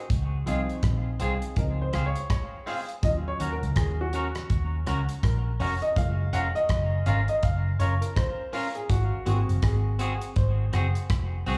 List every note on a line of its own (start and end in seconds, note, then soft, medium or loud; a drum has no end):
0.10 0.43 C#2 loud
0.10 kick loud
0.10 closed hi-hat loud
0.46 0.67 C2 medium
0.46 1.52 F3 medium
0.46 0.60 C4 medium
0.46 1.52 C4 medium
0.46 1.53 D#4 medium
0.46 0.60 F4 medium
0.46 0.61 G#4 medium
0.46 closed hi-hat medium
0.69 closed hi-hat soft
0.83 1.17 A#1 medium
0.83 kick loud
0.83 cross-stick loud
0.83 closed hi-hat loud
1.20 1.40 C2 medium
1.20 1.33 C4 medium
1.20 1.34 F4 medium
1.20 1.58 G#4 medium
1.20 1.34 G#4 medium
1.20 closed hi-hat medium
1.42 closed hi-hat medium
1.56 1.90 C#2 loud
1.56 1.89 F3 soft
1.56 1.89 C4 soft
1.56 1.90 D#4 medium
1.56 1.63 A#4 medium
1.56 kick loud
1.56 closed hi-hat medium
1.82 2.04 C5 medium
1.93 2.14 C#2 medium
1.93 2.06 C4 medium
1.93 2.07 F4 medium
1.93 2.07 G#4 medium
1.93 cross-stick medium
1.93 closed hi-hat medium
2.06 2.29 C#5 loud
2.15 muted clean electric guitar stroke soft
2.15 closed hi-hat medium
2.30 2.68 C#5 medium
2.30 kick loud
2.30 cross-stick loud
2.30 closed hi-hat loud
2.66 2.80 C4 medium
2.66 2.80 F4 medium
2.66 2.81 G#4 medium
2.66 2.75 F5 loud
2.66 open hi-hat medium
2.89 closed hi-hat soft
3.03 3.23 D#2 medium
3.03 5.92 F#3 medium
3.03 5.92 C#4 medium
3.03 5.93 F4 medium
3.03 3.09 D#5 loud
3.03 kick loud
3.03 closed hi-hat loud
3.28 3.53 C#5 loud
3.40 3.60 D#2 medium
3.40 3.53 C#4 medium
3.40 3.53 F#4 medium
3.40 3.54 A#4 medium
3.40 closed hi-hat medium
3.52 3.77 A#4 medium
3.62 3.75 C#2 medium
3.62 closed hi-hat soft
3.76 4.31 D#2 medium
3.76 3.99 G#4 medium
3.76 kick loud
3.76 cross-stick loud
3.76 closed hi-hat loud
4.01 4.70 F#4 medium
4.13 4.26 C#4 medium
4.13 4.27 F#4 medium
4.13 4.27 A#4 medium
4.13 closed hi-hat medium
4.35 cross-stick medium
4.35 closed hi-hat medium
4.50 4.83 D#2 loud
4.50 kick medium
4.50 closed hi-hat medium
4.86 5.07 C#2 medium
4.86 5.00 C#4 medium
4.86 5.00 F#4 medium
4.86 5.01 A#4 medium
4.86 cross-stick medium
4.86 closed hi-hat medium
5.09 muted clean electric guitar stroke soft
5.09 closed hi-hat medium
5.23 5.57 A#1 loud
5.23 5.57 A#4 medium
5.23 kick loud
5.23 cross-stick loud
5.23 closed hi-hat loud
5.60 5.80 F1 medium
5.60 5.73 C#4 medium
5.60 5.74 F#4 medium
5.60 5.74 A#4 medium
5.60 5.83 C#5 medium
5.60 open hi-hat medium
5.82 5.95 D#5 loud
5.82 closed hi-hat medium
5.96 6.30 F#1 medium
5.96 7.02 G#3 medium
5.96 7.02 A#3 medium
5.96 7.03 F4 medium
5.96 6.34 F5 loud
5.96 kick loud
5.96 closed hi-hat loud
6.33 6.53 F1 medium
6.33 6.46 C#4 medium
6.33 6.47 F4 medium
6.33 6.47 A#4 medium
6.33 6.38 F#5 loud
6.33 closed hi-hat loud
6.55 7.08 D#5 loud
6.55 closed hi-hat soft
6.69 7.03 F#1 medium
6.69 kick loud
6.69 cross-stick loud
6.69 closed hi-hat medium
7.06 7.27 G#1 loud
7.06 7.19 C#4 medium
7.06 7.20 F4 medium
7.06 7.21 A#4 medium
7.06 7.29 F5 loud
7.06 closed hi-hat medium
7.28 7.42 D#5 loud
7.28 closed hi-hat medium
7.43 7.76 F#1 loud
7.43 7.81 F5 loud
7.43 kick loud
7.43 closed hi-hat medium
7.79 8.00 F#1 loud
7.79 7.93 C#4 medium
7.79 7.93 F4 medium
7.79 7.94 A#4 medium
7.79 8.00 C#5 loud
7.79 closed hi-hat medium
8.01 8.16 A#4 medium
8.01 muted clean electric guitar stroke soft
8.01 closed hi-hat medium
8.16 8.54 C5 loud
8.16 kick loud
8.16 cross-stick loud
8.16 closed hi-hat medium
8.53 8.66 C#4 medium
8.53 8.67 F4 loud
8.53 8.76 A#4 medium
8.53 8.67 A#4 medium
8.53 open hi-hat medium
8.75 8.90 G#4 medium
8.75 closed hi-hat soft
8.89 9.10 G#1 loud
8.89 9.25 F#4 medium
8.89 kick loud
8.89 closed hi-hat loud
9.25 9.47 G#1 medium
9.25 11.58 A#3 medium
9.25 9.39 C4 medium
9.25 11.58 C4 medium
9.25 11.58 F#4 medium
9.25 9.40 F#4 medium
9.25 9.40 G#4 medium
9.25 closed hi-hat medium
9.49 9.62 F#1 medium
9.49 closed hi-hat soft
9.62 10.18 G#1 medium
9.62 10.38 G#4 medium
9.62 kick loud
9.62 cross-stick loud
9.62 closed hi-hat medium
9.99 10.13 C4 loud
9.99 10.13 F#4 medium
9.99 10.14 G#4 loud
9.99 closed hi-hat medium
10.21 closed hi-hat medium
10.36 10.70 G#1 loud
10.36 11.06 C5 medium
10.36 kick loud
10.36 closed hi-hat medium
10.73 10.93 F#1 medium
10.73 10.86 C4 medium
10.73 10.87 F#4 medium
10.73 10.87 G#4 medium
10.73 cross-stick medium
10.73 closed hi-hat medium
10.95 muted clean electric guitar stroke medium
10.95 closed hi-hat medium
11.10 11.43 F1 loud
11.10 kick loud
11.10 cross-stick loud
11.10 closed hi-hat loud
11.46 11.58 C2 medium
11.46 11.58 C4 loud
11.46 11.58 F#4 loud
11.46 11.58 G#4 loud
11.46 open hi-hat medium